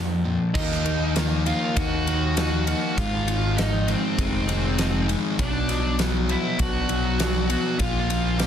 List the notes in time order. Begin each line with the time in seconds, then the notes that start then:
Already playing: F2 A#2 D3 F3
0.24 A#2 D3 F3
0.54 D#2 D#3 A#3 D#4 D#5, kick, crash
0.72 snare
0.85 D#3 A#3 D#4, ride
1.16 D#3 A#3 D#4, snare, ride
1.45 D#3 A#3 D#4 F4 F5, ride
1.76 D#2 D#3 A#3 D#4 F#4 F#5, kick, ride
2.06 D#3 A#3 D#4, ride
2.36 D#3 A#3 D#4, snare, ride
2.66 D#3 A#3 D#4 F#4 F#5, ride
2.97 G#1 G#2 D#3 G#3 F4 F5, kick, ride
3.27 G#2 D#3 G#3, ride
3.57 G#2 D#3 G#3 D#4 D#5, snare, ride
3.87 G#2 D#3 G#3 C4 C5, ride
4.18 F1 G#2 D#3 G#3 D#4, kick, ride
4.48 G#2 D#3 G#3, ride
4.78 G#2 D#3 G#3 D#4, snare, ride
5.09 G#2 D#3 G#3, ride
5.39 B1 B2 F#3 B3 D4 D5, kick, ride
5.69 B2 F#3 B3, snare, ride
5.99 B2 F#3 B3, snare, ride
6.29 B2 F#3 B3 E4 E5, ride
6.59 B1 B2 F#3 B3 D4 F#4 F#5, kick, ride
6.89 B2 F#3 B3, ride
7.19 B2 F#3 B3 D4, snare, ride
7.49 B2 F#3 B3 F#4 F#5, ride
7.79 A#1 A#2 F3 A#3 F4 F5, kick, ride
8.09 A#2 F3 A#3, ride
8.39 A#2 F3 A#3 G4 G5, snare, ride